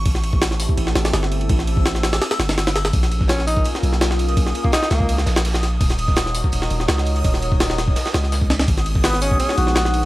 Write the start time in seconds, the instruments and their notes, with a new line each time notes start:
0.05 808-style bass A1, synth texture E6, kick, ride
0.15 snare
0.24 ride
0.33 ambient pad A3 C4 E4 G4 A4, kick
0.42 snare, ride
0.51 snare
0.60 open hi-hat
0.69 kick
0.78 808-style bass A1, ride
0.87 snare
0.95 808-style bass A1, snare, ride
1.05 snare, ride
1.13 808-style bass G1, snare, ride
1.23 snare
1.32 ride
1.41 ride
1.49 808-style bass A1, kick, ride
1.59 snare
1.67 ride
1.77 kick
1.86 snare, ride
1.95 snare
2.03 snare, ride
2.13 snare, ride
2.22 snare, ride
2.31 snare, ride
2.40 808-style bass G1, snare, ride
2.49 snare, ride
2.58 snare, ride
2.67 snare, ride
2.76 snare, ride
2.85 snare, ride
2.93 808-style bass A#1, synth texture D#6, kick, ride, tambourine
3.03 snare, closed hi-hat
3.11 ride, tambourine
3.20 ambient pad A#3 C#4 F4 G#4 A#4, kick, snare
3.28 tenor saxophone C#4, snare, ride, tambourine
3.39 snare
3.47 tenor saxophone D#4, open hi-hat, tambourine
3.57 kick
3.64 ride, tambourine
3.75 snare
3.83 808-style bass B1, ride, tambourine
3.93 snare
4.01 snare, ride, tambourine
4.11 snare
4.19 ride, tambourine
4.29 ride
4.37 kick, ride, tambourine
4.46 snare
4.55 ride, tambourine
4.64 tenor saxophone A#3, kick
4.72 tenor saxophone D#4, snare, ride, tambourine
4.82 snare
4.90 808-style bass C#2, tenor saxophone A#3, snare, ride, tambourine
5.00 kick
5.09 ride, tambourine
5.17 snare
5.26 808-style bass A#1, snare, ride, tambourine
5.36 snare, tambourine
5.44 snare, ride, tambourine
5.53 snare, tambourine
5.63 snare, ride, tambourine
5.81 808-style bass D#1, kick, ride, tambourine
5.90 snare, closed hi-hat
5.98 ride, tambourine
6.07 ambient pad D#4 F#4 A#4 C#5 D#5, kick, snare
6.16 snare, ride, tambourine
6.26 snare
6.35 open hi-hat, tambourine
6.44 kick
6.52 808-style bass D#1, ride, tambourine
6.62 snare
6.70 808-style bass D#1, ride, tambourine
6.80 snare
6.88 808-style bass C#2, snare, ride, tambourine
6.98 snare
7.05 ride, tambourine
7.16 ride
7.24 808-style bass D#1, kick, ride, tambourine
7.34 snare
7.42 ride, tambourine
7.52 kick
7.60 snare, ride, tambourine
7.70 snare
7.78 snare, ride, tambourine
7.88 kick
7.96 snare, ride, tambourine
8.05 snare, tambourine
8.13 808-style bass C#2, snare, ride, tambourine
8.24 snare
8.32 snare, open hi-hat, tambourine
8.41 kick
8.50 snare, ride, tambourine
8.59 snare, ride
8.68 808-style bass G#1, kick, ride, tambourine
8.77 snare, closed hi-hat
8.86 ride, tambourine
8.95 ambient pad G#3 B3 D#4 F#4 G#4, kick, snare
9.03 tenor saxophone B3, snare, ride, tambourine
9.13 snare
9.22 tenor saxophone C#4, open hi-hat, tambourine
9.31 kick
9.39 tenor saxophone C#4, ride, tambourine
9.48 snare
9.57 808-style bass A#1, tenor saxophone F#4, ride, tambourine
9.67 snare
9.75 snare, ride, tambourine
9.85 snare
9.94 ride, tambourine